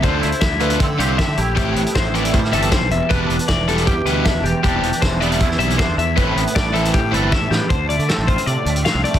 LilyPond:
<<
  \new Staff \with { instrumentName = "Clean electric guitar" } { \time 4/4 \key a \minor \tempo 4 = 156 c''4 e''8 b'8 a'8 c''8 e''8 g'8 | g'4 c''8 d''8 c''8 e''8 c''8 e''8 | b'4 d''8 a'8 g'8 b'8 e''8 g'8 | g'4 c''8 d''8 c''8 e''8 c''8 e''8 |
b'4 d''8 a'8 g'8 b'8 e''8 g'8 | c''8 d''8 a'8 c''8 d''4 f''8 d''8 | }
  \new Staff \with { instrumentName = "Overdriven electric guitar" } { \time 4/4 \key a \minor <d a d' f'>8 r4 <d a d' f'>8 r8 <d a d' f'>8 r4 | <e a c' e'>8 r4 <e a c' e'>8 r8 <e a c' e'>8 r4 | <e g b e'>8 r4 <e g b e'>8 r8 <e g b e'>8 r4 | <e g c' e'>8 r4 <e g c' e'>8 r8 <e g c' e'>8 r4 |
<e a c' e'>8 r4 <e a c' e'>8 r8 <e a c' e'>8 r4 | r1 | }
  \new Staff \with { instrumentName = "Clean electric guitar" } { \time 4/4 \key a \minor << { e'8 e'4. c'8 g'4 e'8~ | e'8 b4. g8 a'4 r8 | d'4. g8 g'4 d'8 r8 | d'4. b8 e'4 d'8 r8 |
r8 b4. g8 a'4 b8 | r4 c'8 f'4. c'4 | } \\ { d4. a4. a,4 | a,4. e4. e,8 e,8~ | e,4 e4. b,4 e,8~ | e,4 e4. e,4 e,8 |
a,4. e4. e,4 | d8 a4. a,8 a4 a8 | } >> }
  \new Staff \with { instrumentName = "Fingered electric bass" } { \clef bass \time 4/4 \key a \minor d,8 d,16 r16 d,4 d8 c,8 r16 d16 bes,,8 | a,,8 a,,16 r16 a,,4 a,8 g,,8 r16 b,,16 e,,16 r16 | e,,8 e,,16 r16 e,,4 e,8 d,8 r16 e,16 e,,16 r16 | e,,8 e,,16 r16 e,,4 e,8 b,,8 r16 e,16 e,8 |
a,,8 a,,16 r16 a,,4 a,8 g,,8 r16 a,16 a,16 r16 | d,8. d16 r16 a,,8 r16 c16 r16 d,8 r16 c,16 r16 d,16 | }
  \new DrumStaff \with { instrumentName = "Drums" } \drummode { \time 4/4 <hh bd>8 hh16 hh16 <hh bd sn>8 hh16 hh16 <hh bd>8 hh8 <hh bd sn>8 hh8 | <hh bd>8 hh16 hh16 <bd sn>8 hh16 hh16 <hh bd>16 sn16 hh16 hh16 <hh bd sn>8 hh8 | <hh bd>8 hh16 hh16 <hh bd sn>8 hh16 hh16 <hh bd>8 hh8 <hh bd sn>8 hh8 | <hh bd>8 hh16 hh16 <hh bd sn>8 hh16 hh16 <hh bd>16 sn16 hh16 hh16 <hh bd sn>8 hh8 |
<hh bd>8 hh16 hh16 <hh bd sn>8 hh16 hh16 <hh bd>8 hh8 <bd sn>8 sn8 | <hh bd>8 hh16 hh16 <hh sn>8 <hh bd>16 hh16 hh8 hh16 hh16 <hh sn>8 hh16 <hh bd>16 | }
>>